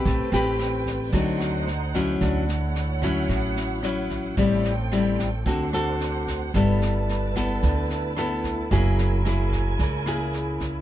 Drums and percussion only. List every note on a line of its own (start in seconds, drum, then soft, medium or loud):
0.05 kick medium
0.05 snare soft
0.33 snare soft
0.60 cross-stick medium
0.60 snare soft
0.86 kick soft
0.86 snare soft
1.13 kick medium
1.13 snare soft
1.40 cross-stick medium
1.40 snare soft
1.67 snare soft
1.94 kick soft
1.94 snare soft
2.21 kick medium
2.21 cross-stick medium
2.21 snare soft
2.48 snare soft
2.75 snare soft
3.02 kick soft
3.02 cross-stick medium
3.02 snare soft
3.29 kick medium
3.29 snare soft
3.56 snare soft
3.83 cross-stick medium
3.83 snare soft
4.10 kick soft
4.10 snare soft
4.37 kick medium
4.37 snare soft
4.65 snare soft
4.92 cross-stick medium
4.92 snare soft
5.19 kick soft
5.19 snare soft
5.46 kick medium
5.46 snare soft
5.73 cross-stick medium
5.73 snare soft
6.00 snare soft
6.27 kick soft
6.27 snare soft
6.54 kick medium
6.54 cross-stick medium
6.54 snare soft
6.82 snare soft
7.09 snare soft
7.36 kick soft
7.36 cross-stick medium
7.36 snare soft
7.63 kick medium
7.63 snare soft
7.90 snare soft
8.17 cross-stick medium
8.17 snare soft
8.44 kick soft
8.44 snare soft
8.71 kick medium
8.71 snare soft
8.98 snare soft
9.25 cross-stick medium
9.25 snare soft
9.52 kick soft
9.52 snare soft
9.79 kick medium
9.79 snare soft
10.06 cross-stick medium
10.06 snare soft
10.33 snare soft
10.60 kick soft
10.60 snare soft